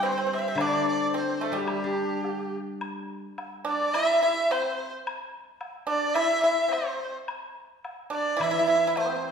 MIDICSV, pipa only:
0, 0, Header, 1, 2, 480
1, 0, Start_track
1, 0, Tempo, 557621
1, 503, Time_signature, 2, 2, 24, 8
1, 8019, End_track
2, 0, Start_track
2, 0, Title_t, "Pipa"
2, 0, Program_c, 0, 105
2, 25, Note_on_c, 0, 60, 71
2, 86, Note_off_c, 0, 60, 0
2, 108, Note_on_c, 0, 60, 55
2, 142, Note_off_c, 0, 60, 0
2, 152, Note_on_c, 0, 60, 58
2, 213, Note_off_c, 0, 60, 0
2, 229, Note_on_c, 0, 60, 49
2, 276, Note_off_c, 0, 60, 0
2, 286, Note_on_c, 0, 60, 52
2, 324, Note_off_c, 0, 60, 0
2, 335, Note_on_c, 0, 60, 49
2, 399, Note_off_c, 0, 60, 0
2, 413, Note_on_c, 0, 60, 60
2, 470, Note_off_c, 0, 60, 0
2, 522, Note_on_c, 0, 62, 78
2, 798, Note_off_c, 0, 62, 0
2, 798, Note_on_c, 0, 60, 78
2, 953, Note_off_c, 0, 60, 0
2, 982, Note_on_c, 0, 60, 74
2, 1200, Note_off_c, 0, 60, 0
2, 1215, Note_on_c, 0, 57, 64
2, 1315, Note_on_c, 0, 55, 62
2, 1325, Note_off_c, 0, 57, 0
2, 2140, Note_off_c, 0, 55, 0
2, 3138, Note_on_c, 0, 62, 72
2, 3370, Note_off_c, 0, 62, 0
2, 3398, Note_on_c, 0, 64, 90
2, 3623, Note_off_c, 0, 64, 0
2, 3636, Note_on_c, 0, 64, 74
2, 3863, Note_off_c, 0, 64, 0
2, 3881, Note_on_c, 0, 60, 67
2, 4214, Note_off_c, 0, 60, 0
2, 5050, Note_on_c, 0, 62, 73
2, 5276, Note_off_c, 0, 62, 0
2, 5299, Note_on_c, 0, 64, 85
2, 5521, Note_off_c, 0, 64, 0
2, 5539, Note_on_c, 0, 64, 71
2, 5751, Note_off_c, 0, 64, 0
2, 5754, Note_on_c, 0, 60, 56
2, 6107, Note_off_c, 0, 60, 0
2, 6973, Note_on_c, 0, 62, 68
2, 7198, Note_off_c, 0, 62, 0
2, 7202, Note_on_c, 0, 64, 85
2, 7254, Note_off_c, 0, 64, 0
2, 7264, Note_on_c, 0, 64, 61
2, 7315, Note_off_c, 0, 64, 0
2, 7325, Note_on_c, 0, 64, 71
2, 7385, Note_off_c, 0, 64, 0
2, 7395, Note_on_c, 0, 64, 62
2, 7458, Note_off_c, 0, 64, 0
2, 7468, Note_on_c, 0, 64, 64
2, 7524, Note_off_c, 0, 64, 0
2, 7534, Note_on_c, 0, 64, 59
2, 7604, Note_off_c, 0, 64, 0
2, 7637, Note_on_c, 0, 64, 68
2, 7688, Note_off_c, 0, 64, 0
2, 7721, Note_on_c, 0, 60, 66
2, 8019, Note_off_c, 0, 60, 0
2, 8019, End_track
0, 0, End_of_file